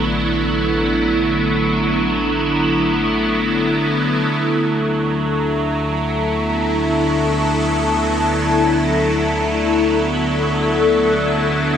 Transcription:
0, 0, Header, 1, 4, 480
1, 0, Start_track
1, 0, Key_signature, 2, "major"
1, 0, Tempo, 500000
1, 11301, End_track
2, 0, Start_track
2, 0, Title_t, "Ambient pad"
2, 0, Program_c, 0, 92
2, 0, Note_on_c, 0, 54, 77
2, 0, Note_on_c, 0, 59, 74
2, 0, Note_on_c, 0, 64, 62
2, 0, Note_on_c, 0, 69, 75
2, 4131, Note_off_c, 0, 54, 0
2, 4132, Note_off_c, 0, 69, 0
2, 4135, Note_off_c, 0, 59, 0
2, 4136, Note_off_c, 0, 64, 0
2, 4218, Note_on_c, 0, 54, 84
2, 5238, Note_on_c, 0, 64, 67
2, 5801, Note_on_c, 0, 59, 82
2, 6050, Note_on_c, 0, 69, 80
2, 11301, Note_off_c, 0, 54, 0
2, 11301, Note_off_c, 0, 59, 0
2, 11301, Note_off_c, 0, 64, 0
2, 11301, Note_off_c, 0, 69, 0
2, 11301, End_track
3, 0, Start_track
3, 0, Title_t, "Synth drone"
3, 0, Program_c, 1, 95
3, 0, Note_on_c, 1, 50, 67
3, 0, Note_on_c, 1, 57, 72
3, 11301, Note_off_c, 1, 50, 0
3, 11301, Note_off_c, 1, 57, 0
3, 11301, End_track
4, 0, Start_track
4, 0, Title_t, "Sub bass"
4, 0, Program_c, 2, 38
4, 0, Note_on_c, 2, 33, 84
4, 4077, Note_off_c, 2, 33, 0
4, 4122, Note_on_c, 2, 38, 73
4, 11301, Note_off_c, 2, 38, 0
4, 11301, End_track
0, 0, End_of_file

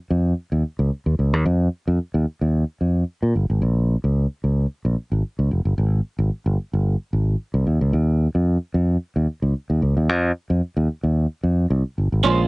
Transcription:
0, 0, Header, 1, 3, 480
1, 0, Start_track
1, 0, Tempo, 539568
1, 1298, Time_signature, 4, 2, 24, 8
1, 11099, End_track
2, 0, Start_track
2, 0, Title_t, "Clean electric guitar"
2, 0, Program_c, 0, 27
2, 10882, Note_on_c, 0, 56, 89
2, 10886, Note_on_c, 0, 61, 100
2, 10891, Note_on_c, 0, 65, 92
2, 10897, Note_on_c, 0, 72, 96
2, 11099, Note_off_c, 0, 56, 0
2, 11099, Note_off_c, 0, 61, 0
2, 11099, Note_off_c, 0, 65, 0
2, 11099, Note_off_c, 0, 72, 0
2, 11099, End_track
3, 0, Start_track
3, 0, Title_t, "Fingered electric bass"
3, 0, Program_c, 1, 33
3, 93, Note_on_c, 1, 41, 82
3, 288, Note_off_c, 1, 41, 0
3, 461, Note_on_c, 1, 39, 80
3, 554, Note_off_c, 1, 39, 0
3, 703, Note_on_c, 1, 37, 85
3, 795, Note_off_c, 1, 37, 0
3, 943, Note_on_c, 1, 39, 80
3, 1035, Note_off_c, 1, 39, 0
3, 1057, Note_on_c, 1, 37, 81
3, 1186, Note_off_c, 1, 37, 0
3, 1186, Note_on_c, 1, 39, 77
3, 1277, Note_off_c, 1, 39, 0
3, 1295, Note_on_c, 1, 41, 114
3, 1490, Note_off_c, 1, 41, 0
3, 1668, Note_on_c, 1, 41, 87
3, 1758, Note_off_c, 1, 41, 0
3, 1906, Note_on_c, 1, 39, 83
3, 1997, Note_off_c, 1, 39, 0
3, 2147, Note_on_c, 1, 39, 85
3, 2341, Note_off_c, 1, 39, 0
3, 2498, Note_on_c, 1, 41, 65
3, 2692, Note_off_c, 1, 41, 0
3, 2869, Note_on_c, 1, 46, 75
3, 2959, Note_off_c, 1, 46, 0
3, 2985, Note_on_c, 1, 31, 74
3, 3085, Note_off_c, 1, 31, 0
3, 3111, Note_on_c, 1, 32, 79
3, 3201, Note_off_c, 1, 32, 0
3, 3218, Note_on_c, 1, 34, 95
3, 3515, Note_off_c, 1, 34, 0
3, 3593, Note_on_c, 1, 37, 81
3, 3784, Note_off_c, 1, 37, 0
3, 3948, Note_on_c, 1, 37, 70
3, 4138, Note_off_c, 1, 37, 0
3, 4313, Note_on_c, 1, 34, 79
3, 4401, Note_off_c, 1, 34, 0
3, 4551, Note_on_c, 1, 32, 85
3, 4640, Note_off_c, 1, 32, 0
3, 4793, Note_on_c, 1, 37, 74
3, 4881, Note_off_c, 1, 37, 0
3, 4904, Note_on_c, 1, 29, 74
3, 5005, Note_off_c, 1, 29, 0
3, 5028, Note_on_c, 1, 31, 82
3, 5119, Note_off_c, 1, 31, 0
3, 5140, Note_on_c, 1, 32, 98
3, 5334, Note_off_c, 1, 32, 0
3, 5503, Note_on_c, 1, 32, 98
3, 5595, Note_off_c, 1, 32, 0
3, 5745, Note_on_c, 1, 31, 96
3, 5837, Note_off_c, 1, 31, 0
3, 5991, Note_on_c, 1, 31, 85
3, 6183, Note_off_c, 1, 31, 0
3, 6342, Note_on_c, 1, 32, 75
3, 6534, Note_off_c, 1, 32, 0
3, 6707, Note_on_c, 1, 36, 82
3, 6797, Note_off_c, 1, 36, 0
3, 6820, Note_on_c, 1, 39, 75
3, 6922, Note_off_c, 1, 39, 0
3, 6950, Note_on_c, 1, 37, 85
3, 7039, Note_off_c, 1, 37, 0
3, 7056, Note_on_c, 1, 39, 91
3, 7353, Note_off_c, 1, 39, 0
3, 7427, Note_on_c, 1, 41, 79
3, 7620, Note_off_c, 1, 41, 0
3, 7777, Note_on_c, 1, 41, 86
3, 7971, Note_off_c, 1, 41, 0
3, 8147, Note_on_c, 1, 39, 78
3, 8237, Note_off_c, 1, 39, 0
3, 8383, Note_on_c, 1, 37, 74
3, 8475, Note_off_c, 1, 37, 0
3, 8626, Note_on_c, 1, 39, 76
3, 8716, Note_off_c, 1, 39, 0
3, 8737, Note_on_c, 1, 37, 76
3, 8839, Note_off_c, 1, 37, 0
3, 8866, Note_on_c, 1, 39, 89
3, 8977, Note_off_c, 1, 39, 0
3, 8977, Note_on_c, 1, 41, 100
3, 9171, Note_off_c, 1, 41, 0
3, 9340, Note_on_c, 1, 41, 88
3, 9432, Note_off_c, 1, 41, 0
3, 9577, Note_on_c, 1, 39, 88
3, 9670, Note_off_c, 1, 39, 0
3, 9816, Note_on_c, 1, 39, 84
3, 10012, Note_off_c, 1, 39, 0
3, 10172, Note_on_c, 1, 41, 80
3, 10366, Note_off_c, 1, 41, 0
3, 10412, Note_on_c, 1, 36, 91
3, 10515, Note_off_c, 1, 36, 0
3, 10656, Note_on_c, 1, 31, 71
3, 10757, Note_off_c, 1, 31, 0
3, 10785, Note_on_c, 1, 32, 78
3, 10874, Note_off_c, 1, 32, 0
3, 10891, Note_on_c, 1, 34, 109
3, 11099, Note_off_c, 1, 34, 0
3, 11099, End_track
0, 0, End_of_file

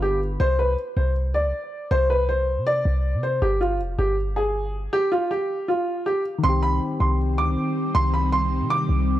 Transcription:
0, 0, Header, 1, 5, 480
1, 0, Start_track
1, 0, Key_signature, -3, "minor"
1, 0, Tempo, 377358
1, 510, Time_signature, 4, 2, 24, 8
1, 11699, End_track
2, 0, Start_track
2, 0, Title_t, "Grand piano"
2, 0, Program_c, 0, 0
2, 30, Note_on_c, 0, 67, 83
2, 229, Note_off_c, 0, 67, 0
2, 507, Note_on_c, 0, 72, 95
2, 707, Note_off_c, 0, 72, 0
2, 750, Note_on_c, 0, 71, 82
2, 949, Note_off_c, 0, 71, 0
2, 1229, Note_on_c, 0, 72, 73
2, 1428, Note_off_c, 0, 72, 0
2, 1709, Note_on_c, 0, 74, 81
2, 2386, Note_off_c, 0, 74, 0
2, 2429, Note_on_c, 0, 72, 96
2, 2628, Note_off_c, 0, 72, 0
2, 2670, Note_on_c, 0, 71, 84
2, 2869, Note_off_c, 0, 71, 0
2, 2909, Note_on_c, 0, 72, 87
2, 3361, Note_off_c, 0, 72, 0
2, 3391, Note_on_c, 0, 74, 94
2, 4067, Note_off_c, 0, 74, 0
2, 4110, Note_on_c, 0, 72, 80
2, 4309, Note_off_c, 0, 72, 0
2, 4349, Note_on_c, 0, 67, 82
2, 4548, Note_off_c, 0, 67, 0
2, 4588, Note_on_c, 0, 65, 76
2, 4788, Note_off_c, 0, 65, 0
2, 5070, Note_on_c, 0, 67, 83
2, 5269, Note_off_c, 0, 67, 0
2, 5550, Note_on_c, 0, 68, 82
2, 6227, Note_off_c, 0, 68, 0
2, 6269, Note_on_c, 0, 67, 96
2, 6469, Note_off_c, 0, 67, 0
2, 6509, Note_on_c, 0, 65, 90
2, 6708, Note_off_c, 0, 65, 0
2, 6752, Note_on_c, 0, 67, 85
2, 7202, Note_off_c, 0, 67, 0
2, 7229, Note_on_c, 0, 65, 83
2, 7680, Note_off_c, 0, 65, 0
2, 7709, Note_on_c, 0, 67, 82
2, 7909, Note_off_c, 0, 67, 0
2, 8186, Note_on_c, 0, 84, 97
2, 8386, Note_off_c, 0, 84, 0
2, 8428, Note_on_c, 0, 83, 84
2, 8628, Note_off_c, 0, 83, 0
2, 8908, Note_on_c, 0, 84, 75
2, 9108, Note_off_c, 0, 84, 0
2, 9389, Note_on_c, 0, 86, 83
2, 10066, Note_off_c, 0, 86, 0
2, 10109, Note_on_c, 0, 84, 104
2, 10308, Note_off_c, 0, 84, 0
2, 10349, Note_on_c, 0, 83, 83
2, 10548, Note_off_c, 0, 83, 0
2, 10589, Note_on_c, 0, 84, 90
2, 11040, Note_off_c, 0, 84, 0
2, 11070, Note_on_c, 0, 86, 94
2, 11699, Note_off_c, 0, 86, 0
2, 11699, End_track
3, 0, Start_track
3, 0, Title_t, "Synth keys"
3, 0, Program_c, 1, 88
3, 0, Control_c, 1, 64, 127
3, 0, Note_on_c, 1, 50, 68
3, 0, Note_on_c, 1, 59, 62
3, 0, Note_on_c, 1, 71, 77
3, 423, Note_off_c, 1, 50, 0
3, 458, Note_off_c, 1, 59, 0
3, 492, Note_off_c, 1, 71, 0
3, 528, Control_c, 1, 64, 0
3, 8120, Note_on_c, 1, 51, 68
3, 8188, Note_on_c, 1, 60, 62
3, 8256, Note_on_c, 1, 67, 73
3, 8444, Control_c, 1, 64, 127
3, 11699, Note_off_c, 1, 51, 0
3, 11699, Note_off_c, 1, 60, 0
3, 11699, Note_off_c, 1, 67, 0
3, 11699, End_track
4, 0, Start_track
4, 0, Title_t, "Ambient pad"
4, 0, Program_c, 2, 92
4, 8189, Note_on_c, 2, 51, 86
4, 8189, Note_on_c, 2, 55, 78
4, 8189, Note_on_c, 2, 60, 79
4, 11699, Note_off_c, 2, 51, 0
4, 11699, Note_off_c, 2, 55, 0
4, 11699, Note_off_c, 2, 60, 0
4, 11699, End_track
5, 0, Start_track
5, 0, Title_t, "808-style bass"
5, 0, Program_c, 3, 38
5, 0, Note_on_c, 3, 31, 107
5, 481, Note_off_c, 3, 31, 0
5, 510, Note_on_c, 3, 36, 113
5, 970, Note_off_c, 3, 36, 0
5, 1230, Note_on_c, 3, 36, 109
5, 1710, Note_on_c, 3, 38, 98
5, 1729, Note_off_c, 3, 36, 0
5, 1837, Note_on_c, 3, 36, 103
5, 1856, Note_off_c, 3, 38, 0
5, 1944, Note_off_c, 3, 36, 0
5, 2430, Note_on_c, 3, 36, 107
5, 3277, Note_on_c, 3, 48, 99
5, 3296, Note_off_c, 3, 36, 0
5, 3612, Note_off_c, 3, 48, 0
5, 3630, Note_on_c, 3, 36, 110
5, 3997, Note_on_c, 3, 48, 95
5, 4016, Note_off_c, 3, 36, 0
5, 4332, Note_off_c, 3, 48, 0
5, 4350, Note_on_c, 3, 31, 110
5, 4830, Note_on_c, 3, 29, 96
5, 4849, Note_off_c, 3, 31, 0
5, 5058, Note_off_c, 3, 29, 0
5, 5070, Note_on_c, 3, 31, 111
5, 6222, Note_off_c, 3, 31, 0
5, 8189, Note_on_c, 3, 36, 111
5, 8650, Note_off_c, 3, 36, 0
5, 8909, Note_on_c, 3, 36, 110
5, 9389, Note_on_c, 3, 38, 104
5, 9408, Note_off_c, 3, 36, 0
5, 9516, Note_on_c, 3, 36, 105
5, 9535, Note_off_c, 3, 38, 0
5, 9624, Note_off_c, 3, 36, 0
5, 10110, Note_on_c, 3, 36, 112
5, 10957, Note_on_c, 3, 48, 99
5, 10976, Note_off_c, 3, 36, 0
5, 11292, Note_off_c, 3, 48, 0
5, 11309, Note_on_c, 3, 36, 107
5, 11696, Note_off_c, 3, 36, 0
5, 11699, End_track
0, 0, End_of_file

